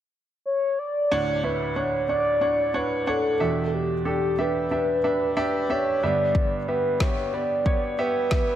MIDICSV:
0, 0, Header, 1, 4, 480
1, 0, Start_track
1, 0, Key_signature, 2, "major"
1, 0, Tempo, 654308
1, 816, Time_signature, 4, 2, 24, 8
1, 6276, End_track
2, 0, Start_track
2, 0, Title_t, "Soft synth lead"
2, 0, Program_c, 0, 80
2, 334, Note_on_c, 0, 73, 81
2, 577, Note_on_c, 0, 74, 85
2, 588, Note_off_c, 0, 73, 0
2, 1057, Note_on_c, 0, 71, 73
2, 1068, Note_off_c, 0, 74, 0
2, 1295, Note_on_c, 0, 73, 78
2, 1306, Note_off_c, 0, 71, 0
2, 1532, Note_off_c, 0, 73, 0
2, 1536, Note_on_c, 0, 74, 81
2, 2025, Note_on_c, 0, 71, 80
2, 2036, Note_off_c, 0, 74, 0
2, 2266, Note_on_c, 0, 69, 84
2, 2277, Note_off_c, 0, 71, 0
2, 2694, Note_off_c, 0, 69, 0
2, 2694, Note_on_c, 0, 69, 54
2, 2745, Note_on_c, 0, 67, 75
2, 2756, Note_off_c, 0, 69, 0
2, 2981, Note_off_c, 0, 67, 0
2, 2988, Note_on_c, 0, 67, 75
2, 3229, Note_on_c, 0, 71, 86
2, 3240, Note_off_c, 0, 67, 0
2, 4191, Note_on_c, 0, 73, 85
2, 4202, Note_off_c, 0, 71, 0
2, 4425, Note_on_c, 0, 74, 92
2, 4436, Note_off_c, 0, 73, 0
2, 4899, Note_off_c, 0, 74, 0
2, 4904, Note_on_c, 0, 71, 89
2, 5152, Note_on_c, 0, 73, 92
2, 5163, Note_off_c, 0, 71, 0
2, 5387, Note_on_c, 0, 74, 86
2, 5398, Note_off_c, 0, 73, 0
2, 5870, Note_on_c, 0, 71, 94
2, 5881, Note_off_c, 0, 74, 0
2, 6276, Note_off_c, 0, 71, 0
2, 6276, End_track
3, 0, Start_track
3, 0, Title_t, "Grand piano"
3, 0, Program_c, 1, 0
3, 818, Note_on_c, 1, 38, 60
3, 818, Note_on_c, 1, 62, 96
3, 819, Note_on_c, 1, 45, 65
3, 819, Note_on_c, 1, 73, 80
3, 820, Note_on_c, 1, 78, 92
3, 938, Control_c, 1, 64, 127
3, 1014, Note_off_c, 1, 62, 0
3, 1014, Note_off_c, 1, 73, 0
3, 1015, Note_off_c, 1, 78, 0
3, 1052, Note_on_c, 1, 73, 41
3, 1053, Note_on_c, 1, 62, 45
3, 1054, Note_on_c, 1, 76, 52
3, 1251, Note_off_c, 1, 73, 0
3, 1252, Note_off_c, 1, 62, 0
3, 1252, Note_off_c, 1, 76, 0
3, 1292, Note_on_c, 1, 62, 51
3, 1292, Note_on_c, 1, 73, 47
3, 1292, Note_on_c, 1, 78, 56
3, 1491, Note_off_c, 1, 62, 0
3, 1491, Note_off_c, 1, 73, 0
3, 1491, Note_off_c, 1, 78, 0
3, 1532, Note_on_c, 1, 62, 48
3, 1534, Note_on_c, 1, 73, 46
3, 1536, Note_on_c, 1, 78, 54
3, 1731, Note_off_c, 1, 62, 0
3, 1732, Note_off_c, 1, 73, 0
3, 1733, Note_off_c, 1, 78, 0
3, 1767, Note_on_c, 1, 62, 56
3, 1771, Note_on_c, 1, 73, 50
3, 1771, Note_on_c, 1, 78, 57
3, 1969, Note_off_c, 1, 62, 0
3, 1970, Note_off_c, 1, 78, 0
3, 1971, Note_off_c, 1, 73, 0
3, 2010, Note_on_c, 1, 62, 63
3, 2012, Note_on_c, 1, 73, 63
3, 2012, Note_on_c, 1, 78, 67
3, 2210, Note_off_c, 1, 62, 0
3, 2211, Note_off_c, 1, 73, 0
3, 2211, Note_off_c, 1, 78, 0
3, 2253, Note_on_c, 1, 62, 67
3, 2254, Note_on_c, 1, 73, 62
3, 2255, Note_on_c, 1, 78, 77
3, 2452, Note_off_c, 1, 62, 0
3, 2452, Note_off_c, 1, 73, 0
3, 2453, Note_off_c, 1, 78, 0
3, 2468, Note_off_c, 1, 38, 0
3, 2469, Note_off_c, 1, 45, 0
3, 2494, Note_on_c, 1, 62, 56
3, 2494, Note_on_c, 1, 67, 52
3, 2496, Note_on_c, 1, 40, 46
3, 2496, Note_on_c, 1, 47, 49
3, 2497, Note_on_c, 1, 76, 66
3, 2505, Control_c, 1, 64, 0
3, 2653, Control_c, 1, 64, 127
3, 2889, Note_off_c, 1, 62, 0
3, 2889, Note_off_c, 1, 67, 0
3, 2890, Note_off_c, 1, 76, 0
3, 2972, Note_on_c, 1, 67, 52
3, 2973, Note_on_c, 1, 62, 50
3, 2973, Note_on_c, 1, 69, 61
3, 3172, Note_off_c, 1, 62, 0
3, 3172, Note_off_c, 1, 67, 0
3, 3172, Note_off_c, 1, 69, 0
3, 3217, Note_on_c, 1, 62, 54
3, 3217, Note_on_c, 1, 76, 63
3, 3218, Note_on_c, 1, 67, 55
3, 3414, Note_off_c, 1, 62, 0
3, 3414, Note_off_c, 1, 67, 0
3, 3414, Note_off_c, 1, 76, 0
3, 3456, Note_on_c, 1, 62, 54
3, 3458, Note_on_c, 1, 67, 49
3, 3460, Note_on_c, 1, 76, 57
3, 3654, Note_off_c, 1, 62, 0
3, 3654, Note_off_c, 1, 67, 0
3, 3655, Note_off_c, 1, 76, 0
3, 3698, Note_on_c, 1, 62, 60
3, 3698, Note_on_c, 1, 67, 50
3, 3698, Note_on_c, 1, 76, 60
3, 3895, Note_off_c, 1, 62, 0
3, 3895, Note_off_c, 1, 67, 0
3, 3895, Note_off_c, 1, 76, 0
3, 3937, Note_on_c, 1, 62, 78
3, 3937, Note_on_c, 1, 67, 75
3, 3937, Note_on_c, 1, 76, 87
3, 4134, Note_off_c, 1, 62, 0
3, 4134, Note_off_c, 1, 67, 0
3, 4134, Note_off_c, 1, 76, 0
3, 4180, Note_on_c, 1, 62, 63
3, 4181, Note_on_c, 1, 67, 64
3, 4183, Note_on_c, 1, 76, 75
3, 4376, Note_off_c, 1, 62, 0
3, 4376, Note_off_c, 1, 67, 0
3, 4377, Note_off_c, 1, 76, 0
3, 4388, Note_off_c, 1, 40, 0
3, 4388, Note_off_c, 1, 47, 0
3, 4423, Note_on_c, 1, 59, 59
3, 4425, Note_on_c, 1, 43, 48
3, 4426, Note_on_c, 1, 50, 49
3, 4426, Note_on_c, 1, 67, 57
3, 4426, Note_on_c, 1, 76, 65
3, 4427, Control_c, 1, 64, 0
3, 4563, Control_c, 1, 64, 127
3, 4814, Note_off_c, 1, 59, 0
3, 4815, Note_off_c, 1, 76, 0
3, 4816, Note_off_c, 1, 67, 0
3, 4903, Note_on_c, 1, 59, 55
3, 4903, Note_on_c, 1, 67, 49
3, 4903, Note_on_c, 1, 76, 55
3, 5097, Note_off_c, 1, 59, 0
3, 5097, Note_off_c, 1, 67, 0
3, 5097, Note_off_c, 1, 76, 0
3, 5142, Note_on_c, 1, 67, 56
3, 5142, Note_on_c, 1, 76, 60
3, 5143, Note_on_c, 1, 59, 56
3, 5337, Note_off_c, 1, 59, 0
3, 5337, Note_off_c, 1, 67, 0
3, 5337, Note_off_c, 1, 76, 0
3, 5380, Note_on_c, 1, 59, 56
3, 5381, Note_on_c, 1, 67, 47
3, 5382, Note_on_c, 1, 74, 53
3, 5576, Note_off_c, 1, 59, 0
3, 5576, Note_off_c, 1, 67, 0
3, 5577, Note_off_c, 1, 74, 0
3, 5619, Note_on_c, 1, 59, 55
3, 5621, Note_on_c, 1, 67, 54
3, 5621, Note_on_c, 1, 73, 60
3, 5815, Note_off_c, 1, 59, 0
3, 5816, Note_off_c, 1, 67, 0
3, 5816, Note_off_c, 1, 73, 0
3, 5858, Note_on_c, 1, 59, 74
3, 5859, Note_on_c, 1, 76, 74
3, 5860, Note_on_c, 1, 67, 70
3, 6055, Note_off_c, 1, 59, 0
3, 6055, Note_off_c, 1, 76, 0
3, 6056, Note_off_c, 1, 67, 0
3, 6098, Note_on_c, 1, 59, 71
3, 6099, Note_on_c, 1, 76, 81
3, 6100, Note_on_c, 1, 67, 68
3, 6276, Note_off_c, 1, 43, 0
3, 6276, Note_off_c, 1, 50, 0
3, 6276, Note_off_c, 1, 59, 0
3, 6276, Note_off_c, 1, 67, 0
3, 6276, Note_off_c, 1, 76, 0
3, 6276, End_track
4, 0, Start_track
4, 0, Title_t, "Drums"
4, 4657, Note_on_c, 9, 36, 84
4, 4731, Note_off_c, 9, 36, 0
4, 5137, Note_on_c, 9, 38, 85
4, 5138, Note_on_c, 9, 36, 85
4, 5211, Note_off_c, 9, 36, 0
4, 5211, Note_off_c, 9, 38, 0
4, 5617, Note_on_c, 9, 36, 75
4, 5691, Note_off_c, 9, 36, 0
4, 6096, Note_on_c, 9, 38, 83
4, 6099, Note_on_c, 9, 36, 89
4, 6169, Note_off_c, 9, 38, 0
4, 6173, Note_off_c, 9, 36, 0
4, 6276, End_track
0, 0, End_of_file